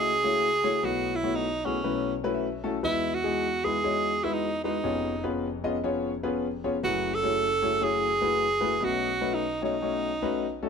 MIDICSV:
0, 0, Header, 1, 3, 480
1, 0, Start_track
1, 0, Tempo, 498339
1, 813, Time_signature, 4, 2, 24, 8
1, 10299, End_track
2, 0, Start_track
2, 0, Title_t, "Grand piano"
2, 0, Program_c, 0, 0
2, 0, Note_on_c, 0, 37, 70
2, 0, Note_on_c, 0, 49, 66
2, 0, Note_on_c, 0, 57, 82
2, 0, Note_on_c, 0, 64, 72
2, 0, Note_on_c, 0, 66, 76
2, 0, Note_on_c, 0, 68, 73
2, 0, Note_on_c, 0, 75, 90
2, 111, Note_off_c, 0, 64, 0
2, 113, Note_off_c, 0, 66, 0
2, 113, Note_off_c, 0, 75, 0
2, 114, Note_off_c, 0, 68, 0
2, 115, Note_off_c, 0, 57, 0
2, 228, Note_on_c, 0, 64, 76
2, 230, Note_on_c, 0, 68, 79
2, 230, Note_on_c, 0, 73, 87
2, 232, Note_on_c, 0, 66, 76
2, 234, Note_on_c, 0, 57, 80
2, 445, Note_off_c, 0, 64, 0
2, 446, Note_off_c, 0, 68, 0
2, 446, Note_off_c, 0, 73, 0
2, 447, Note_off_c, 0, 66, 0
2, 448, Note_off_c, 0, 57, 0
2, 615, Note_on_c, 0, 73, 106
2, 616, Note_on_c, 0, 57, 92
2, 617, Note_on_c, 0, 64, 79
2, 617, Note_on_c, 0, 66, 82
2, 620, Note_on_c, 0, 68, 80
2, 733, Note_off_c, 0, 73, 0
2, 734, Note_off_c, 0, 57, 0
2, 734, Note_off_c, 0, 64, 0
2, 734, Note_off_c, 0, 66, 0
2, 736, Note_off_c, 0, 68, 0
2, 768, Note_off_c, 0, 37, 0
2, 771, Note_off_c, 0, 49, 0
2, 800, Note_on_c, 0, 59, 75
2, 800, Note_on_c, 0, 66, 73
2, 801, Note_on_c, 0, 35, 66
2, 801, Note_on_c, 0, 57, 81
2, 801, Note_on_c, 0, 71, 90
2, 802, Note_on_c, 0, 47, 66
2, 804, Note_on_c, 0, 64, 76
2, 1070, Note_off_c, 0, 59, 0
2, 1070, Note_off_c, 0, 66, 0
2, 1070, Note_off_c, 0, 71, 0
2, 1071, Note_off_c, 0, 57, 0
2, 1072, Note_off_c, 0, 64, 0
2, 1189, Note_on_c, 0, 57, 74
2, 1189, Note_on_c, 0, 64, 71
2, 1191, Note_on_c, 0, 59, 75
2, 1191, Note_on_c, 0, 66, 74
2, 1191, Note_on_c, 0, 73, 87
2, 1406, Note_off_c, 0, 57, 0
2, 1406, Note_off_c, 0, 64, 0
2, 1407, Note_off_c, 0, 59, 0
2, 1407, Note_off_c, 0, 66, 0
2, 1407, Note_off_c, 0, 73, 0
2, 1588, Note_on_c, 0, 66, 67
2, 1590, Note_on_c, 0, 64, 70
2, 1591, Note_on_c, 0, 59, 75
2, 1592, Note_on_c, 0, 68, 86
2, 1593, Note_on_c, 0, 57, 77
2, 1700, Note_off_c, 0, 66, 0
2, 1701, Note_off_c, 0, 64, 0
2, 1702, Note_off_c, 0, 59, 0
2, 1703, Note_off_c, 0, 57, 0
2, 1703, Note_off_c, 0, 68, 0
2, 1729, Note_off_c, 0, 35, 0
2, 1730, Note_off_c, 0, 47, 0
2, 1772, Note_on_c, 0, 57, 79
2, 1773, Note_on_c, 0, 35, 69
2, 1773, Note_on_c, 0, 64, 77
2, 1775, Note_on_c, 0, 61, 72
2, 1775, Note_on_c, 0, 71, 92
2, 1777, Note_on_c, 0, 66, 73
2, 1778, Note_on_c, 0, 47, 68
2, 2037, Note_off_c, 0, 57, 0
2, 2037, Note_off_c, 0, 64, 0
2, 2038, Note_off_c, 0, 61, 0
2, 2038, Note_off_c, 0, 71, 0
2, 2039, Note_off_c, 0, 66, 0
2, 2155, Note_on_c, 0, 66, 84
2, 2158, Note_on_c, 0, 57, 97
2, 2159, Note_on_c, 0, 71, 111
2, 2162, Note_on_c, 0, 61, 86
2, 2162, Note_on_c, 0, 64, 86
2, 2257, Note_on_c, 0, 76, 75
2, 2369, Note_off_c, 0, 66, 0
2, 2371, Note_off_c, 0, 57, 0
2, 2372, Note_off_c, 0, 71, 0
2, 2373, Note_off_c, 0, 61, 0
2, 2373, Note_off_c, 0, 64, 0
2, 2540, Note_on_c, 0, 69, 98
2, 2542, Note_on_c, 0, 57, 88
2, 2542, Note_on_c, 0, 66, 83
2, 2544, Note_on_c, 0, 61, 78
2, 2547, Note_on_c, 0, 64, 78
2, 2657, Note_off_c, 0, 69, 0
2, 2658, Note_off_c, 0, 57, 0
2, 2658, Note_off_c, 0, 66, 0
2, 2659, Note_off_c, 0, 61, 0
2, 2660, Note_off_c, 0, 64, 0
2, 2696, Note_off_c, 0, 35, 0
2, 2698, Note_off_c, 0, 47, 0
2, 2702, Note_off_c, 0, 76, 0
2, 2726, Note_on_c, 0, 40, 68
2, 2726, Note_on_c, 0, 64, 70
2, 2727, Note_on_c, 0, 52, 66
2, 2727, Note_on_c, 0, 63, 69
2, 2727, Note_on_c, 0, 71, 89
2, 2728, Note_on_c, 0, 56, 72
2, 2729, Note_on_c, 0, 66, 69
2, 2994, Note_off_c, 0, 63, 0
2, 2994, Note_off_c, 0, 64, 0
2, 2994, Note_off_c, 0, 71, 0
2, 2995, Note_off_c, 0, 56, 0
2, 2995, Note_off_c, 0, 66, 0
2, 3119, Note_on_c, 0, 63, 70
2, 3120, Note_on_c, 0, 56, 73
2, 3121, Note_on_c, 0, 66, 72
2, 3123, Note_on_c, 0, 64, 67
2, 3123, Note_on_c, 0, 68, 89
2, 3332, Note_off_c, 0, 56, 0
2, 3332, Note_off_c, 0, 63, 0
2, 3333, Note_off_c, 0, 66, 0
2, 3334, Note_off_c, 0, 64, 0
2, 3334, Note_off_c, 0, 68, 0
2, 3509, Note_on_c, 0, 56, 78
2, 3509, Note_on_c, 0, 64, 69
2, 3510, Note_on_c, 0, 63, 70
2, 3510, Note_on_c, 0, 66, 69
2, 3511, Note_on_c, 0, 71, 80
2, 3622, Note_off_c, 0, 56, 0
2, 3622, Note_off_c, 0, 63, 0
2, 3622, Note_off_c, 0, 64, 0
2, 3622, Note_off_c, 0, 66, 0
2, 3623, Note_off_c, 0, 71, 0
2, 3698, Note_on_c, 0, 66, 72
2, 3700, Note_on_c, 0, 63, 73
2, 3700, Note_on_c, 0, 73, 91
2, 3701, Note_on_c, 0, 56, 77
2, 3701, Note_on_c, 0, 64, 72
2, 3960, Note_off_c, 0, 66, 0
2, 3961, Note_off_c, 0, 56, 0
2, 3961, Note_off_c, 0, 63, 0
2, 3961, Note_off_c, 0, 64, 0
2, 3961, Note_off_c, 0, 73, 0
2, 4084, Note_on_c, 0, 63, 74
2, 4085, Note_on_c, 0, 56, 83
2, 4085, Note_on_c, 0, 66, 75
2, 4087, Note_on_c, 0, 71, 88
2, 4089, Note_on_c, 0, 64, 71
2, 4294, Note_off_c, 0, 63, 0
2, 4295, Note_off_c, 0, 56, 0
2, 4295, Note_off_c, 0, 66, 0
2, 4296, Note_off_c, 0, 71, 0
2, 4297, Note_off_c, 0, 64, 0
2, 4471, Note_on_c, 0, 71, 85
2, 4473, Note_on_c, 0, 63, 70
2, 4474, Note_on_c, 0, 66, 66
2, 4476, Note_on_c, 0, 56, 72
2, 4476, Note_on_c, 0, 64, 66
2, 4582, Note_off_c, 0, 71, 0
2, 4583, Note_off_c, 0, 63, 0
2, 4584, Note_off_c, 0, 66, 0
2, 4585, Note_off_c, 0, 56, 0
2, 4585, Note_off_c, 0, 64, 0
2, 4612, Note_off_c, 0, 40, 0
2, 4613, Note_off_c, 0, 52, 0
2, 4659, Note_on_c, 0, 73, 84
2, 4660, Note_on_c, 0, 41, 71
2, 4661, Note_on_c, 0, 61, 74
2, 4662, Note_on_c, 0, 29, 67
2, 4662, Note_on_c, 0, 59, 79
2, 4662, Note_on_c, 0, 68, 75
2, 4666, Note_on_c, 0, 65, 72
2, 4920, Note_off_c, 0, 73, 0
2, 4921, Note_off_c, 0, 61, 0
2, 4922, Note_off_c, 0, 59, 0
2, 4922, Note_off_c, 0, 68, 0
2, 4924, Note_off_c, 0, 65, 0
2, 5044, Note_on_c, 0, 65, 79
2, 5045, Note_on_c, 0, 61, 83
2, 5045, Note_on_c, 0, 71, 97
2, 5047, Note_on_c, 0, 59, 89
2, 5048, Note_on_c, 0, 68, 80
2, 5254, Note_off_c, 0, 65, 0
2, 5255, Note_off_c, 0, 61, 0
2, 5255, Note_off_c, 0, 71, 0
2, 5256, Note_off_c, 0, 59, 0
2, 5256, Note_off_c, 0, 68, 0
2, 5430, Note_on_c, 0, 59, 96
2, 5431, Note_on_c, 0, 68, 89
2, 5434, Note_on_c, 0, 65, 85
2, 5435, Note_on_c, 0, 61, 85
2, 5435, Note_on_c, 0, 75, 106
2, 5542, Note_off_c, 0, 59, 0
2, 5542, Note_off_c, 0, 68, 0
2, 5544, Note_off_c, 0, 61, 0
2, 5544, Note_off_c, 0, 65, 0
2, 5544, Note_off_c, 0, 75, 0
2, 5620, Note_on_c, 0, 59, 98
2, 5621, Note_on_c, 0, 65, 87
2, 5623, Note_on_c, 0, 68, 84
2, 5625, Note_on_c, 0, 61, 88
2, 5626, Note_on_c, 0, 73, 101
2, 5881, Note_off_c, 0, 59, 0
2, 5881, Note_off_c, 0, 65, 0
2, 5882, Note_off_c, 0, 68, 0
2, 5883, Note_off_c, 0, 61, 0
2, 5884, Note_off_c, 0, 73, 0
2, 6005, Note_on_c, 0, 71, 102
2, 6007, Note_on_c, 0, 59, 97
2, 6007, Note_on_c, 0, 61, 90
2, 6008, Note_on_c, 0, 65, 91
2, 6010, Note_on_c, 0, 68, 90
2, 6214, Note_off_c, 0, 71, 0
2, 6215, Note_off_c, 0, 59, 0
2, 6215, Note_off_c, 0, 61, 0
2, 6216, Note_off_c, 0, 65, 0
2, 6217, Note_off_c, 0, 68, 0
2, 6395, Note_on_c, 0, 68, 82
2, 6396, Note_on_c, 0, 59, 87
2, 6397, Note_on_c, 0, 65, 82
2, 6398, Note_on_c, 0, 61, 88
2, 6399, Note_on_c, 0, 73, 98
2, 6504, Note_off_c, 0, 68, 0
2, 6505, Note_off_c, 0, 59, 0
2, 6505, Note_off_c, 0, 65, 0
2, 6506, Note_off_c, 0, 61, 0
2, 6506, Note_off_c, 0, 73, 0
2, 6538, Note_off_c, 0, 41, 0
2, 6539, Note_off_c, 0, 29, 0
2, 6582, Note_on_c, 0, 57, 79
2, 6582, Note_on_c, 0, 71, 86
2, 6583, Note_on_c, 0, 30, 67
2, 6583, Note_on_c, 0, 42, 66
2, 6583, Note_on_c, 0, 68, 73
2, 6584, Note_on_c, 0, 64, 75
2, 6586, Note_on_c, 0, 66, 74
2, 6841, Note_off_c, 0, 71, 0
2, 6842, Note_off_c, 0, 57, 0
2, 6842, Note_off_c, 0, 64, 0
2, 6842, Note_off_c, 0, 68, 0
2, 6843, Note_off_c, 0, 66, 0
2, 6964, Note_on_c, 0, 66, 73
2, 6965, Note_on_c, 0, 57, 75
2, 6965, Note_on_c, 0, 64, 74
2, 6968, Note_on_c, 0, 68, 73
2, 6968, Note_on_c, 0, 73, 86
2, 7174, Note_off_c, 0, 57, 0
2, 7174, Note_off_c, 0, 64, 0
2, 7174, Note_off_c, 0, 66, 0
2, 7176, Note_off_c, 0, 68, 0
2, 7176, Note_off_c, 0, 73, 0
2, 7340, Note_on_c, 0, 68, 76
2, 7341, Note_on_c, 0, 73, 87
2, 7342, Note_on_c, 0, 57, 80
2, 7342, Note_on_c, 0, 64, 75
2, 7344, Note_on_c, 0, 66, 71
2, 7456, Note_off_c, 0, 68, 0
2, 7457, Note_off_c, 0, 57, 0
2, 7457, Note_off_c, 0, 64, 0
2, 7457, Note_off_c, 0, 73, 0
2, 7458, Note_off_c, 0, 66, 0
2, 7523, Note_on_c, 0, 64, 75
2, 7523, Note_on_c, 0, 68, 76
2, 7526, Note_on_c, 0, 57, 81
2, 7528, Note_on_c, 0, 66, 74
2, 7529, Note_on_c, 0, 73, 87
2, 7792, Note_off_c, 0, 64, 0
2, 7792, Note_off_c, 0, 68, 0
2, 7793, Note_off_c, 0, 57, 0
2, 7794, Note_off_c, 0, 66, 0
2, 7795, Note_off_c, 0, 73, 0
2, 7911, Note_on_c, 0, 66, 72
2, 7913, Note_on_c, 0, 57, 86
2, 7913, Note_on_c, 0, 68, 72
2, 7914, Note_on_c, 0, 64, 72
2, 7915, Note_on_c, 0, 71, 90
2, 8127, Note_off_c, 0, 66, 0
2, 8128, Note_off_c, 0, 57, 0
2, 8128, Note_off_c, 0, 64, 0
2, 8128, Note_off_c, 0, 68, 0
2, 8129, Note_off_c, 0, 71, 0
2, 8290, Note_on_c, 0, 71, 98
2, 8295, Note_on_c, 0, 64, 77
2, 8295, Note_on_c, 0, 66, 80
2, 8295, Note_on_c, 0, 68, 82
2, 8296, Note_on_c, 0, 57, 91
2, 8411, Note_off_c, 0, 71, 0
2, 8413, Note_off_c, 0, 66, 0
2, 8413, Note_off_c, 0, 68, 0
2, 8414, Note_off_c, 0, 57, 0
2, 8414, Note_off_c, 0, 64, 0
2, 8459, Note_off_c, 0, 30, 0
2, 8459, Note_off_c, 0, 42, 0
2, 8478, Note_on_c, 0, 57, 76
2, 8478, Note_on_c, 0, 71, 85
2, 8481, Note_on_c, 0, 61, 68
2, 8481, Note_on_c, 0, 66, 71
2, 8483, Note_on_c, 0, 35, 65
2, 8483, Note_on_c, 0, 47, 70
2, 8485, Note_on_c, 0, 63, 71
2, 8749, Note_off_c, 0, 57, 0
2, 8749, Note_off_c, 0, 71, 0
2, 8750, Note_off_c, 0, 61, 0
2, 8750, Note_off_c, 0, 66, 0
2, 8752, Note_off_c, 0, 63, 0
2, 8871, Note_on_c, 0, 57, 78
2, 8873, Note_on_c, 0, 63, 71
2, 8873, Note_on_c, 0, 66, 70
2, 8875, Note_on_c, 0, 61, 71
2, 8875, Note_on_c, 0, 71, 88
2, 9086, Note_off_c, 0, 57, 0
2, 9087, Note_off_c, 0, 63, 0
2, 9088, Note_off_c, 0, 61, 0
2, 9088, Note_off_c, 0, 66, 0
2, 9089, Note_off_c, 0, 71, 0
2, 9265, Note_on_c, 0, 61, 69
2, 9267, Note_on_c, 0, 66, 71
2, 9268, Note_on_c, 0, 73, 89
2, 9271, Note_on_c, 0, 57, 82
2, 9273, Note_on_c, 0, 63, 75
2, 9378, Note_off_c, 0, 61, 0
2, 9379, Note_off_c, 0, 66, 0
2, 9380, Note_off_c, 0, 73, 0
2, 9381, Note_off_c, 0, 57, 0
2, 9382, Note_off_c, 0, 63, 0
2, 9460, Note_on_c, 0, 63, 73
2, 9461, Note_on_c, 0, 66, 70
2, 9461, Note_on_c, 0, 73, 85
2, 9464, Note_on_c, 0, 57, 79
2, 9464, Note_on_c, 0, 61, 74
2, 9719, Note_off_c, 0, 63, 0
2, 9720, Note_off_c, 0, 66, 0
2, 9720, Note_off_c, 0, 73, 0
2, 9722, Note_off_c, 0, 57, 0
2, 9722, Note_off_c, 0, 61, 0
2, 9845, Note_on_c, 0, 61, 85
2, 9845, Note_on_c, 0, 63, 89
2, 9847, Note_on_c, 0, 57, 93
2, 9847, Note_on_c, 0, 66, 88
2, 9849, Note_on_c, 0, 71, 102
2, 10053, Note_off_c, 0, 61, 0
2, 10053, Note_off_c, 0, 63, 0
2, 10054, Note_off_c, 0, 57, 0
2, 10054, Note_off_c, 0, 66, 0
2, 10055, Note_off_c, 0, 71, 0
2, 10235, Note_on_c, 0, 69, 91
2, 10236, Note_on_c, 0, 66, 81
2, 10237, Note_on_c, 0, 57, 87
2, 10238, Note_on_c, 0, 61, 79
2, 10238, Note_on_c, 0, 63, 84
2, 10299, Note_off_c, 0, 35, 0
2, 10299, Note_off_c, 0, 47, 0
2, 10299, Note_off_c, 0, 57, 0
2, 10299, Note_off_c, 0, 61, 0
2, 10299, Note_off_c, 0, 63, 0
2, 10299, Note_off_c, 0, 66, 0
2, 10299, Note_off_c, 0, 69, 0
2, 10299, End_track
3, 0, Start_track
3, 0, Title_t, "Tenor saxophone"
3, 0, Program_c, 1, 66
3, 0, Note_on_c, 1, 68, 118
3, 818, Note_on_c, 1, 66, 106
3, 832, Note_off_c, 1, 68, 0
3, 1111, Note_on_c, 1, 64, 94
3, 1125, Note_off_c, 1, 66, 0
3, 1303, Note_on_c, 1, 63, 94
3, 1318, Note_off_c, 1, 64, 0
3, 1591, Note_on_c, 1, 61, 82
3, 1606, Note_off_c, 1, 63, 0
3, 2069, Note_off_c, 1, 61, 0
3, 2741, Note_on_c, 1, 64, 100
3, 3028, Note_on_c, 1, 66, 109
3, 3043, Note_off_c, 1, 64, 0
3, 3510, Note_on_c, 1, 68, 105
3, 3524, Note_off_c, 1, 66, 0
3, 4080, Note_on_c, 1, 64, 89
3, 4095, Note_off_c, 1, 68, 0
3, 4171, Note_on_c, 1, 63, 93
3, 4185, Note_off_c, 1, 64, 0
3, 4465, Note_off_c, 1, 63, 0
3, 4472, Note_on_c, 1, 63, 86
3, 5099, Note_off_c, 1, 63, 0
3, 6588, Note_on_c, 1, 66, 109
3, 6883, Note_on_c, 1, 69, 118
3, 6898, Note_off_c, 1, 66, 0
3, 7545, Note_on_c, 1, 68, 119
3, 7559, Note_off_c, 1, 69, 0
3, 8518, Note_on_c, 1, 66, 109
3, 8533, Note_off_c, 1, 68, 0
3, 8993, Note_on_c, 1, 63, 92
3, 9008, Note_off_c, 1, 66, 0
3, 9274, Note_off_c, 1, 63, 0
3, 9290, Note_on_c, 1, 63, 87
3, 10198, Note_off_c, 1, 63, 0
3, 10299, End_track
0, 0, End_of_file